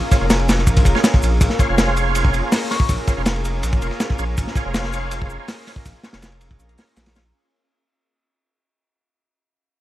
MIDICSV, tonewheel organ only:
0, 0, Header, 1, 2, 480
1, 0, Start_track
1, 0, Key_signature, -5, "minor"
1, 0, Tempo, 370370
1, 1830, Time_signature, 4, 2, 24, 8
1, 12705, End_track
2, 0, Start_track
2, 0, Title_t, "Tonewheel organ"
2, 0, Program_c, 0, 16
2, 148, Note_on_c, 0, 61, 81
2, 148, Note_on_c, 0, 65, 75
2, 148, Note_on_c, 0, 68, 77
2, 148, Note_on_c, 0, 72, 88
2, 218, Note_off_c, 0, 61, 0
2, 218, Note_off_c, 0, 65, 0
2, 218, Note_off_c, 0, 68, 0
2, 218, Note_off_c, 0, 72, 0
2, 268, Note_on_c, 0, 68, 70
2, 269, Note_on_c, 0, 65, 68
2, 270, Note_on_c, 0, 61, 77
2, 270, Note_on_c, 0, 72, 83
2, 337, Note_off_c, 0, 61, 0
2, 337, Note_off_c, 0, 65, 0
2, 337, Note_off_c, 0, 68, 0
2, 337, Note_off_c, 0, 72, 0
2, 1230, Note_on_c, 0, 61, 98
2, 1230, Note_on_c, 0, 65, 89
2, 1231, Note_on_c, 0, 68, 91
2, 1231, Note_on_c, 0, 72, 106
2, 1298, Note_off_c, 0, 61, 0
2, 1298, Note_off_c, 0, 65, 0
2, 1298, Note_off_c, 0, 68, 0
2, 1298, Note_off_c, 0, 72, 0
2, 2070, Note_on_c, 0, 65, 70
2, 2070, Note_on_c, 0, 68, 73
2, 2071, Note_on_c, 0, 61, 76
2, 2071, Note_on_c, 0, 72, 84
2, 2174, Note_off_c, 0, 65, 0
2, 2174, Note_off_c, 0, 68, 0
2, 2174, Note_off_c, 0, 72, 0
2, 2175, Note_off_c, 0, 61, 0
2, 2191, Note_on_c, 0, 61, 97
2, 2191, Note_on_c, 0, 65, 87
2, 2191, Note_on_c, 0, 68, 84
2, 2192, Note_on_c, 0, 72, 103
2, 3122, Note_off_c, 0, 61, 0
2, 3122, Note_off_c, 0, 65, 0
2, 3123, Note_off_c, 0, 68, 0
2, 3123, Note_off_c, 0, 72, 0
2, 3151, Note_on_c, 0, 61, 89
2, 3151, Note_on_c, 0, 65, 83
2, 3152, Note_on_c, 0, 68, 82
2, 3152, Note_on_c, 0, 72, 97
2, 3258, Note_off_c, 0, 61, 0
2, 3258, Note_off_c, 0, 65, 0
2, 3258, Note_off_c, 0, 68, 0
2, 3259, Note_off_c, 0, 72, 0
2, 3510, Note_on_c, 0, 61, 90
2, 3510, Note_on_c, 0, 65, 81
2, 3510, Note_on_c, 0, 68, 84
2, 3510, Note_on_c, 0, 72, 99
2, 3579, Note_off_c, 0, 61, 0
2, 3579, Note_off_c, 0, 65, 0
2, 3579, Note_off_c, 0, 68, 0
2, 3579, Note_off_c, 0, 72, 0
2, 3988, Note_on_c, 0, 61, 83
2, 3988, Note_on_c, 0, 65, 77
2, 3989, Note_on_c, 0, 68, 75
2, 3989, Note_on_c, 0, 72, 92
2, 4058, Note_off_c, 0, 61, 0
2, 4058, Note_off_c, 0, 65, 0
2, 4059, Note_off_c, 0, 68, 0
2, 4059, Note_off_c, 0, 72, 0
2, 4110, Note_on_c, 0, 61, 76
2, 4110, Note_on_c, 0, 65, 69
2, 4110, Note_on_c, 0, 68, 68
2, 4110, Note_on_c, 0, 72, 84
2, 4178, Note_off_c, 0, 61, 0
2, 4178, Note_off_c, 0, 65, 0
2, 4178, Note_off_c, 0, 68, 0
2, 4178, Note_off_c, 0, 72, 0
2, 4947, Note_on_c, 0, 61, 77
2, 4947, Note_on_c, 0, 68, 68
2, 4947, Note_on_c, 0, 72, 85
2, 4948, Note_on_c, 0, 65, 70
2, 5018, Note_off_c, 0, 61, 0
2, 5018, Note_off_c, 0, 65, 0
2, 5018, Note_off_c, 0, 68, 0
2, 5018, Note_off_c, 0, 72, 0
2, 5428, Note_on_c, 0, 65, 93
2, 5429, Note_on_c, 0, 68, 91
2, 5429, Note_on_c, 0, 72, 110
2, 5430, Note_on_c, 0, 61, 99
2, 5498, Note_off_c, 0, 65, 0
2, 5499, Note_off_c, 0, 61, 0
2, 5499, Note_off_c, 0, 68, 0
2, 5499, Note_off_c, 0, 72, 0
2, 5907, Note_on_c, 0, 61, 78
2, 5907, Note_on_c, 0, 65, 71
2, 5907, Note_on_c, 0, 68, 73
2, 5907, Note_on_c, 0, 72, 88
2, 6013, Note_off_c, 0, 61, 0
2, 6013, Note_off_c, 0, 65, 0
2, 6013, Note_off_c, 0, 68, 0
2, 6013, Note_off_c, 0, 72, 0
2, 6032, Note_on_c, 0, 61, 95
2, 6032, Note_on_c, 0, 65, 88
2, 6032, Note_on_c, 0, 68, 88
2, 6032, Note_on_c, 0, 72, 105
2, 6963, Note_off_c, 0, 61, 0
2, 6963, Note_off_c, 0, 65, 0
2, 6963, Note_off_c, 0, 68, 0
2, 6963, Note_off_c, 0, 72, 0
2, 6990, Note_on_c, 0, 61, 90
2, 6990, Note_on_c, 0, 72, 98
2, 6991, Note_on_c, 0, 65, 82
2, 6991, Note_on_c, 0, 68, 83
2, 7098, Note_off_c, 0, 61, 0
2, 7098, Note_off_c, 0, 65, 0
2, 7098, Note_off_c, 0, 68, 0
2, 7098, Note_off_c, 0, 72, 0
2, 7348, Note_on_c, 0, 72, 99
2, 7349, Note_on_c, 0, 61, 91
2, 7349, Note_on_c, 0, 65, 83
2, 7350, Note_on_c, 0, 68, 83
2, 7418, Note_off_c, 0, 72, 0
2, 7419, Note_off_c, 0, 61, 0
2, 7419, Note_off_c, 0, 65, 0
2, 7419, Note_off_c, 0, 68, 0
2, 7830, Note_on_c, 0, 61, 84
2, 7830, Note_on_c, 0, 65, 75
2, 7830, Note_on_c, 0, 68, 76
2, 7830, Note_on_c, 0, 72, 90
2, 7899, Note_off_c, 0, 61, 0
2, 7899, Note_off_c, 0, 65, 0
2, 7899, Note_off_c, 0, 68, 0
2, 7900, Note_off_c, 0, 72, 0
2, 7950, Note_on_c, 0, 61, 75
2, 7950, Note_on_c, 0, 68, 69
2, 7950, Note_on_c, 0, 72, 85
2, 7951, Note_on_c, 0, 65, 68
2, 8017, Note_off_c, 0, 72, 0
2, 8018, Note_off_c, 0, 61, 0
2, 8018, Note_off_c, 0, 65, 0
2, 8018, Note_off_c, 0, 68, 0
2, 8790, Note_on_c, 0, 65, 68
2, 8791, Note_on_c, 0, 61, 75
2, 8791, Note_on_c, 0, 68, 69
2, 8791, Note_on_c, 0, 72, 82
2, 8859, Note_off_c, 0, 65, 0
2, 8860, Note_off_c, 0, 61, 0
2, 8860, Note_off_c, 0, 68, 0
2, 8860, Note_off_c, 0, 72, 0
2, 9269, Note_on_c, 0, 61, 100
2, 9269, Note_on_c, 0, 68, 89
2, 9269, Note_on_c, 0, 72, 111
2, 9270, Note_on_c, 0, 65, 93
2, 9339, Note_off_c, 0, 61, 0
2, 9339, Note_off_c, 0, 65, 0
2, 9339, Note_off_c, 0, 68, 0
2, 9339, Note_off_c, 0, 72, 0
2, 12705, End_track
0, 0, End_of_file